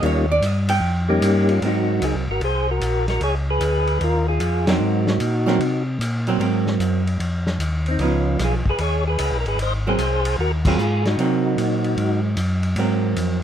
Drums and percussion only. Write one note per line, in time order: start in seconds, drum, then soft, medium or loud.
0.03 ride medium
0.42 hi-hat pedal medium
0.42 ride medium
0.69 ride medium
1.22 hi-hat pedal medium
1.22 ride medium
1.49 ride soft
1.62 ride medium
2.02 hi-hat pedal medium
2.02 ride medium
2.41 ride medium
2.81 hi-hat pedal medium
2.81 ride medium
3.08 snare soft
3.08 ride soft
3.21 ride medium
3.61 hi-hat pedal medium
3.61 ride medium
3.87 ride soft
4.01 ride medium
4.40 hi-hat pedal medium
4.40 ride medium
4.67 snare medium
4.67 ride medium
5.07 snare medium
5.20 hi-hat pedal medium
5.20 ride medium
5.47 snare soft
5.61 ride medium
6.01 hi-hat pedal medium
6.01 ride medium
6.27 ride soft
6.41 ride medium
6.67 snare soft
6.80 hi-hat pedal medium
6.80 ride medium
7.07 ride soft
7.20 ride medium
7.47 snare medium
7.60 hi-hat pedal medium
7.60 ride medium
7.86 ride soft
7.99 ride medium
8.39 snare soft
8.39 hi-hat pedal medium
8.39 ride medium
8.66 kick medium
8.78 ride medium
9.18 hi-hat pedal medium
9.18 ride medium
9.46 ride soft
9.59 ride medium
9.98 hi-hat pedal medium
9.98 ride medium
10.25 ride medium
10.65 kick medium
10.65 crash medium
10.79 hi-hat pedal medium
11.05 snare soft
11.05 ride soft
11.19 ride medium
11.58 hi-hat pedal soft
11.58 ride medium
11.84 ride soft
11.97 ride medium
12.37 hi-hat pedal medium
12.37 ride medium
12.63 ride soft
12.76 ride medium
13.16 hi-hat pedal medium
13.16 ride medium